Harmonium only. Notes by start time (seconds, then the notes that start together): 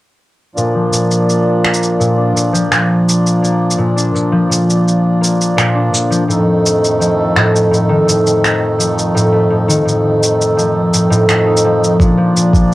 0.55 A#2 F3 D4
6.30 F2 D#3 A3
11.99 A#2 F3 D4